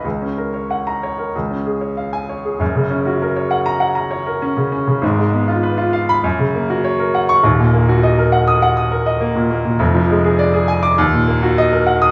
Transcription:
\new Staff \with { instrumentName = "Grand piano" } { \time 4/4 \key fis \major \tempo 4 = 100 << { r4 r16 ais''8 r4. gis''8 r16 | r4. r16 ais''8 r4. r16 | r4. r16 ces'''16 r4. r16 cis'''16 | r4. r16 dis'''8 r4. r16 |
r4. r16 d'''16 r4. r16 dis'''16 | } \\ { cis,16 cis'16 ais'16 cis''16 fis''8 cis''16 ais'16 cis,16 cis'16 gis'16 cis''16 eis''8 cis''16 gis'16 | <fis,, fis,>16 cis16 cis'16 fis'16 ais'16 cis''16 fis''8 fis''16 ais''16 cis''16 ais'16 cis'16 cis16 cis'16 cis16 | <aes,, aes,>16 aes16 ces'16 f'16 ces''16 f'16 f''8 fis,16 cis16 ais16 fis'16 cis''16 ais'16 fis''8 | <dis,, dis,>16 ais,16 ais16 fis'16 dis''16 ais'16 fis''8 fis''16 dis'''16 ais'16 dis''16 ais16 ais,16 ais16 ais,16 |
<f,, f,>16 f16 aes16 aes'16 d''16 aes'16 aes''8 dis,16 ais,16 ais16 fis'16 dis''16 ais'16 fis''8 | } >> }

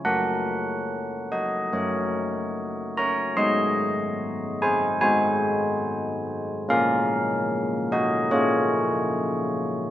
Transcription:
\new Staff \with { instrumentName = "Church bells" } { \time 4/4 \key ges \lydian \tempo 4 = 73 << { <bes' ges''>4. <ges' ees''>8 <ges' des''>4 r8 <des'' bes''>8 | <ees'' c'''>4. <c'' aes''>8 <c'' aes''>2 | <bes' f''>4. <ges' ees''>8 <f' des''>4 r4 | } \\ { <ges ges'>2 <ges bes'>2 | <aes ees' ges'>2 <aes ees' ges'>2 | <bes des' f'>2 <bes des'>2 | } >> }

